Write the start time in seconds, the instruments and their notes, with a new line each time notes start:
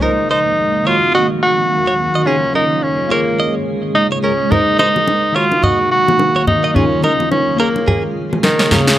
0.01 ambient pad D#3 A#3, synth keys G#3 D#4 A#4 C5, tenor saxophone D#4, clean electric guitar A#4
0.30 tenor saxophone D#4, clean electric guitar C5
0.83 synth keys D#3 D#4 F5, ambient pad F#3 A#4 F5, tenor saxophone F4, clean electric guitar C#5
0.89 synth keys F#4
1.15 tenor saxophone F#4, clean electric guitar D#5
1.43 tenor saxophone F#4
1.87 clean electric guitar C#5
2.15 clean electric guitar D#5
2.25 synth keys C#3 C#4 D#4 F4, ambient pad G#3 G#4, tenor saxophone C#4, clean electric guitar G#4
2.55 tenor saxophone D#4, clean electric guitar A#4
2.83 tenor saxophone C#4
3.08 ambient pad C#3 A#3, synth keys A#3 F4 G#4, tenor saxophone A#3, clean electric guitar C#5
3.13 synth keys C#5
3.40 clean electric guitar D#5
3.95 tenor saxophone D#4
4.12 clean electric guitar C#5
4.23 tenor saxophone C#4, clean electric guitar A#4
4.50 synth keys G#3 D#4 A#4 C5, ambient pad A#3, tenor saxophone D#4, clean electric guitar A#4, low conga
4.79 tenor saxophone D#4, clean electric guitar C5, high bongo, low bongo
4.96 low bongo
5.07 high bongo
5.32 synth keys D#3 D#4 F5, ambient pad D#3 F#3 A#4 F5, tenor saxophone F4, clean electric guitar C#5
5.37 synth keys F#4
5.52 high bongo
5.63 tenor saxophone F#4, clean electric guitar D#5, low conga
5.91 tenor saxophone F#4
6.08 low bongo
6.19 high bongo
6.36 clean electric guitar C#5
6.47 tenor saxophone D#4, low bongo, low conga
6.64 clean electric guitar D#5
6.74 synth keys C#3 C#4 D#4 F4, ambient pad G#3, tenor saxophone C#4, clean electric guitar G#4, low conga
7.04 tenor saxophone D#4, clean electric guitar A#4, high bongo, low bongo
7.20 low bongo
7.31 tenor saxophone C#4, high bongo
7.56 ambient pad C#3 A#3 F4 G#4, synth keys A#3 F4 G#4, tenor saxophone A#3, clean electric guitar A#4
7.61 synth keys C#5
7.76 high bongo
7.88 clean electric guitar G#4, low conga
8.33 low bongo
8.43 tenor saxophone D#3, snare, high bongo
8.59 clean electric guitar C#5, snare
8.71 tenor saxophone C#3, clean electric guitar A#4, snare, low bongo, low conga
8.87 snare